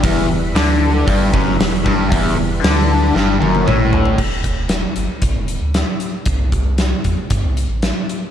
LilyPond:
<<
  \new Staff \with { instrumentName = "Tonewheel organ" } { \time 4/4 \key e \minor \tempo 4 = 116 <g e' b'>1~ | <g e' b'>1 | r1 | r1 | }
  \new Staff \with { instrumentName = "Overdriven electric guitar" } { \clef bass \time 4/4 \key e \minor e,8 e,8 d4 g,8 fis,8 e,8 g,8 | e,8 e,8 d4 g,8 fis,8 a,4 | r1 | r1 | }
  \new Staff \with { instrumentName = "Overdriven electric guitar" } { \clef bass \time 4/4 \key e \minor e,8 e,8 d4 g,8 fis,8 e,8 g,8 | e,8 e,8 d4 g,8 fis,8 a,4 | r1 | r1 | }
  \new Staff \with { instrumentName = "Sub bass" } { \clef bass \time 4/4 \key e \minor e,,8 e,,8 d,4 g,,8 fis,,8 e,,8 g,,8 | e,,8 e,,8 d,4 g,,8 fis,,8 a,,4 | e,,4. g,,16 r16 b,,16 e,,8 d,8 r8. | c,4. e,16 r16 g,16 c,8 a,,8 r8. | }
  \new DrumStaff \with { instrumentName = "Drums" } \drummode { \time 4/4 <hho bd>4 <hho sn>4 <hho bd>8 bd8 <hho sn>8 bd8 | <hho bd>4 <hho sn>4 sn8 tommh16 tommh16 toml8 tomfh16 tomfh16 | <cymc bd>8 <hh bd>8 <hh sn>8 hh8 <hh bd>8 hh8 <hh sn>8 hh8 | <hh bd>8 <hh bd>8 <hh sn>8 <hh bd>8 <hh bd>8 hh8 <hh sn>8 hh8 | }
>>